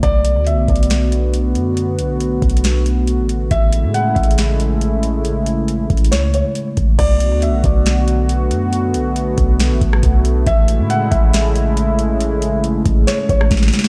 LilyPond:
<<
  \new Staff \with { instrumentName = "Felt piano" } { \time 4/4 \key b \dorian \tempo 4 = 138 d''4 e''8 d''2~ d''8 | r1 | e''4 fis''8 e''2~ e''8 | r2 cis''8 cis''8 r4 |
d''4 e''8 d''2~ d''8 | r1 | e''4 fis''8 e''2~ e''8 | r2 cis''8 cis''8 r4 | }
  \new Staff \with { instrumentName = "Analog synth pad" } { \time 4/4 \key b \dorian <d a b fis'>1~ | <d a b fis'>1 | <cis gis a e'>1~ | <cis gis a e'>1 |
<d a b fis'>1~ | <d a b fis'>1 | <cis gis e'>1~ | <cis gis e'>1 | }
  \new Staff \with { instrumentName = "808-style bass" } { \clef bass \time 4/4 \key b \dorian b,,8. d,16. b,,16. b,,2 fis,8~ | fis,8 b,,4 b,,4.~ b,,16 a,,8. | a,,8. a,8. a,,2~ a,,8~ | a,,4. a,,8 cis,8. r8. a,,8 |
b,,8. d,16. b,,16. b,,2 fis,8~ | fis,8 b,,4 b,,8. a,,16 a,,8 b,,4 | a,,8. a,8. a,,2~ a,,8~ | a,,4. a,,8 r8 a,,8 a,,8 r8 | }
  \new DrumStaff \with { instrumentName = "Drums" } \drummode { \time 4/4 <hh bd>8 hh8 \tuplet 3/2 { hh16 r16 r16 <hh bd>16 hh16 hh16 } <hh sn>8 hh8 hh8 hh8 | hh8 hh8 \tuplet 3/2 { hh16 r16 r16 <hh bd>16 hh16 hh16 } <hh sn>8 hh8 hh8 hh8 | <hh bd>8 hh8 \tuplet 3/2 { hh16 r16 r16 <hh bd>16 hh16 hh16 } <hh sn>8 hh8 hh8 hh8 | hh8 hh8 \tuplet 3/2 { hh16 r16 r16 <hh bd>16 hh16 hh16 } <hh sn>8 hh8 hh8 <hh bd>8 |
<cymc hh bd>8 hh8 hh8 <hh bd>8 <hh sn>8 hh8 hh8 hh8 | hh8 hh8 hh8 <hh bd>8 <hh sn>8 <hh bd>16 ss16 <hh bd>8 hh8 | <hh bd>8 hh8 hh8 <hh bd>8 <hh sn>8 hh8 hh8 hh8 | hh8 hh8 hh8 <hh bd>8 <hh sn>8 <hh bd>16 ss16 <hh bd sn>32 sn32 sn32 sn32 <hh sn>32 sn32 sn16 | }
>>